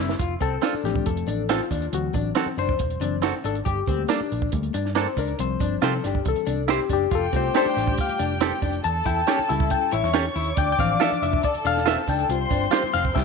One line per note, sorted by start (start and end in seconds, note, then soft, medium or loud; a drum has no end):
0.00 0.14 F#1 medium
0.00 0.14 G3 medium
0.00 0.15 C4 medium
0.00 0.12 E4 medium
0.00 0.15 E4 medium
0.09 snare medium
0.19 0.35 F1 loud
0.19 0.34 F4 medium
0.19 kick medium
0.19 closed hi-hat loud
0.41 0.57 C2 medium
0.41 0.55 C4 medium
0.41 0.86 A4 loud
0.41 kick medium
0.41 closed hi-hat medium
0.62 0.73 C4 medium
0.62 1.03 D4 medium
0.62 0.74 F4 medium
0.62 0.74 A4 medium
0.62 snare medium
0.62 closed hi-hat medium
0.74 muted picked electric bass stroke soft
0.84 1.00 A1 medium
0.84 1.46 F3 medium
0.84 1.47 A3 soft
0.84 1.47 C4 medium
0.84 1.07 G4 medium
0.84 snare soft
0.84 closed hi-hat medium
0.96 kick medium
1.06 1.22 F1 loud
1.06 1.51 A4 medium
1.06 kick medium
1.06 closed hi-hat medium
1.17 closed hi-hat medium
1.27 1.59 A1 medium
1.27 1.42 D4 medium
1.27 closed hi-hat medium
1.49 1.60 C4 medium
1.49 1.64 C4 medium
1.49 1.60 F4 medium
1.49 1.95 F4 medium
1.49 1.61 A4 medium
1.49 snare loud
1.49 closed hi-hat medium
1.71 1.87 D#2 medium
1.71 1.85 D4 medium
1.71 kick medium
1.71 closed hi-hat medium
1.82 closed hi-hat soft
1.92 2.09 D2 loud
1.92 3.00 E3 medium
1.92 3.01 F#3 soft
1.92 3.01 C4 medium
1.92 2.14 F#4 medium
1.92 closed hi-hat medium
2.14 2.30 A1 medium
2.14 2.29 D4 medium
2.14 kick medium
2.14 closed hi-hat medium
2.35 2.46 C4 medium
2.35 2.50 C4 medium
2.35 2.47 F#4 medium
2.35 2.47 A4 medium
2.35 snare loud
2.35 closed hi-hat medium
2.46 muted picked electric bass stroke soft
2.57 2.73 F#1 medium
2.57 2.72 D4 medium
2.57 3.41 C5 loud
2.57 closed hi-hat medium
2.69 kick loud
2.79 2.95 E1 loud
2.79 kick loud
2.79 closed hi-hat medium
2.90 closed hi-hat soft
3.00 3.32 F#1 medium
3.00 3.21 E3 medium
3.00 3.21 F#3 soft
3.00 3.21 C4 medium
3.00 3.15 D4 medium
3.00 closed hi-hat medium
3.22 3.33 C4 medium
3.22 3.37 C4 medium
3.22 3.33 F#4 medium
3.22 3.34 A4 medium
3.22 snare loud
3.22 closed hi-hat medium
3.44 3.60 G#1 medium
3.44 3.58 D4 medium
3.44 3.55 A4 medium
3.44 closed hi-hat medium
3.55 closed hi-hat soft
3.65 3.82 G1 loud
3.65 3.79 G4 medium
3.65 4.28 G4 medium
3.65 kick loud
3.65 closed hi-hat medium
3.87 4.04 D2 medium
3.87 4.17 G3 medium
3.87 4.17 A3 soft
3.87 4.17 A#3 medium
3.87 4.02 C4 medium
3.87 kick medium
3.87 closed hi-hat medium
4.09 4.19 A#3 medium
4.09 4.50 D4 medium
4.09 4.20 D4 medium
4.09 4.20 A4 medium
4.09 snare loud
4.09 closed hi-hat loud
4.20 muted picked electric bass stroke soft
4.32 4.47 A#1 medium
4.32 closed hi-hat medium
4.42 kick loud
4.52 4.69 D2 loud
4.52 4.72 G3 soft
4.52 4.72 A3 soft
4.52 4.73 A#3 medium
4.52 kick loud
4.52 closed hi-hat medium
4.63 closed hi-hat medium
4.74 5.06 G2 medium
4.74 4.88 D4 medium
4.74 closed hi-hat medium
4.86 snare soft
4.95 5.06 A#3 medium
4.95 5.10 C4 medium
4.95 5.06 D4 medium
4.95 5.07 A4 medium
4.95 5.18 C5 medium
4.95 snare loud
4.95 closed hi-hat medium
5.17 5.33 C#2 medium
5.17 5.32 D4 medium
5.17 5.38 A#4 medium
5.17 kick medium
5.17 closed hi-hat medium
5.27 closed hi-hat soft
5.39 5.55 C2 loud
5.39 6.01 F3 medium
5.39 6.01 G3 medium
5.39 6.01 C4 medium
5.39 5.80 C5 medium
5.39 closed hi-hat medium
5.60 5.76 G1 medium
5.60 5.75 D4 medium
5.60 kick medium
5.60 closed hi-hat medium
5.82 5.98 C3 loud
5.82 5.96 C4 medium
5.82 5.92 F4 medium
5.82 5.93 G4 medium
5.82 6.03 A4 medium
5.82 5.93 C5 medium
5.82 snare loud
5.82 closed hi-hat medium
6.04 6.20 G1 medium
6.04 6.18 D4 medium
6.04 6.27 G4 medium
6.04 snare soft
6.04 closed hi-hat medium
6.15 kick medium
6.25 6.33 C2 loud
6.25 6.54 E3 medium
6.25 6.55 G3 soft
6.25 6.55 C4 soft
6.25 6.67 A4 medium
6.25 kick medium
6.25 closed hi-hat medium
6.36 closed hi-hat soft
6.47 6.79 C2 medium
6.47 6.61 D4 medium
6.47 closed hi-hat medium
6.68 6.83 C4 medium
6.68 6.79 E4 medium
6.68 6.79 G4 medium
6.68 6.92 G4 medium
6.68 6.80 C5 medium
6.68 snare loud
6.68 closed hi-hat medium
6.90 7.06 F#1 medium
6.90 7.04 D4 medium
6.90 7.14 G4 medium
6.90 kick medium
6.90 closed hi-hat medium
7.11 7.27 F1 loud
7.11 7.26 F4 medium
7.11 8.81 G4 medium
7.11 8.82 G5 medium
7.11 kick loud
7.11 closed hi-hat medium
7.15 7.36 A4 medium
7.33 7.49 C2 medium
7.33 8.81 G3 medium
7.33 8.81 A3 soft
7.33 7.47 C4 medium
7.33 8.81 F4 medium
7.33 7.56 C5 medium
7.33 kick medium
7.33 closed hi-hat medium
7.54 7.65 C4 medium
7.54 7.95 D4 medium
7.54 7.66 G4 medium
7.54 7.66 A4 loud
7.54 7.96 C5 loud
7.54 snare medium
7.54 closed hi-hat medium
7.66 muted picked electric bass stroke soft
7.77 7.92 A1 medium
7.77 snare soft
7.77 closed hi-hat medium
7.88 kick loud
7.98 8.20 F5 medium
7.98 kick loud
7.98 closed hi-hat medium
8.09 muted picked electric bass stroke soft
8.09 closed hi-hat medium
8.19 8.51 F1 medium
8.19 8.34 D4 medium
8.19 closed hi-hat medium
8.41 8.55 C4 medium
8.41 8.52 C4 medium
8.41 8.52 G4 medium
8.41 8.52 A4 medium
8.41 snare loud
8.41 closed hi-hat loud
8.62 8.78 F1 medium
8.62 8.77 D4 medium
8.62 kick medium
8.62 closed hi-hat medium
8.73 closed hi-hat soft
8.84 9.01 E2 loud
8.84 9.90 A4 medium
8.84 9.04 A5 loud
8.84 9.91 A5 medium
8.84 closed hi-hat medium
9.05 9.21 E2 medium
9.05 9.20 E4 medium
9.05 9.51 G5 medium
9.05 kick medium
9.05 closed hi-hat medium
9.27 9.41 C#4 medium
9.27 9.38 C#4 medium
9.27 9.38 G4 medium
9.27 9.39 A4 medium
9.27 snare medium
9.27 closed hi-hat medium
9.39 muted picked electric bass stroke soft
9.49 9.73 C#2 loud
9.49 10.11 G3 medium
9.49 10.11 C#4 medium
9.49 9.63 E4 medium
9.49 10.12 E4 medium
9.49 9.71 E5 medium
9.49 closed hi-hat medium
9.60 kick loud
9.70 9.93 G5 medium
9.70 kick medium
9.70 closed hi-hat medium
9.92 10.03 A1 loud
9.92 10.06 E4 medium
9.92 10.56 C#5 medium
9.92 10.13 E5 medium
9.92 10.56 C#6 medium
9.92 closed hi-hat medium
10.03 10.27 E2 medium
10.03 snare soft
10.14 10.24 C#4 medium
10.14 10.28 C#4 medium
10.14 10.24 G4 medium
10.14 10.25 A4 medium
10.14 snare loud
10.14 closed hi-hat medium
10.36 10.51 D#2 medium
10.36 10.50 E4 medium
10.36 open hi-hat medium
10.46 closed hi-hat medium
10.57 10.73 D2 loud
10.57 10.71 D4 medium
10.57 11.41 D5 medium
10.57 10.71 G5 loud
10.57 11.41 D6 medium
10.57 kick loud
10.57 closed hi-hat loud
10.72 10.79 G5 medium
10.79 10.94 A1 loud
10.79 11.41 E3 medium
10.79 11.40 F3 medium
10.79 10.93 C4 medium
10.79 11.41 D4 medium
10.79 11.24 F5 medium
10.79 kick medium
10.79 closed hi-hat medium
11.00 11.41 D4 medium
11.00 11.10 F4 medium
11.00 11.11 A4 medium
11.00 11.11 E5 medium
11.00 snare loud
11.00 closed hi-hat medium
11.12 muted picked electric bass stroke soft
11.22 11.38 F1 medium
11.22 11.44 E5 medium
11.22 closed hi-hat medium
11.33 kick loud
11.43 12.28 A4 medium
11.43 11.54 D5 medium
11.43 12.28 A5 medium
11.43 kick medium
11.43 closed hi-hat medium
11.54 muted picked electric bass stroke soft
11.54 closed hi-hat soft
11.65 11.96 E1 medium
11.65 11.79 D4 medium
11.65 12.06 F5 loud
11.65 closed hi-hat medium
11.77 snare soft
11.86 12.00 C4 medium
11.86 11.96 F4 medium
11.86 11.97 A4 medium
11.86 11.97 E5 loud
11.86 snare loud
11.86 closed hi-hat medium
12.07 12.23 C#2 medium
12.07 12.22 D4 medium
12.07 12.69 G5 medium
12.07 kick medium
12.07 closed hi-hat medium
12.19 closed hi-hat soft
12.29 12.45 C2 loud
12.29 12.91 G3 medium
12.29 12.91 C4 medium
12.29 12.91 F4 medium
12.29 13.14 C5 medium
12.29 13.14 C6 medium
12.29 closed hi-hat medium
12.50 12.66 G1 medium
12.50 12.65 D4 medium
12.50 kick loud
12.50 closed hi-hat medium
12.71 12.86 C4 medium
12.71 12.82 F4 medium
12.71 12.83 G4 medium
12.71 12.83 C5 loud
12.71 snare loud
12.71 closed hi-hat medium
12.84 muted picked electric bass stroke soft
12.93 13.10 F1 medium
12.93 13.07 C4 medium
12.93 13.03 F5 loud
12.93 snare soft
12.93 closed hi-hat medium
13.05 kick medium
13.15 13.24 C2 loud
13.15 13.24 G3 medium
13.15 13.24 C4 soft
13.15 13.24 E4 medium
13.15 13.24 G4 medium
13.15 13.24 E5 medium
13.15 13.24 G5 medium
13.15 kick medium
13.15 snare medium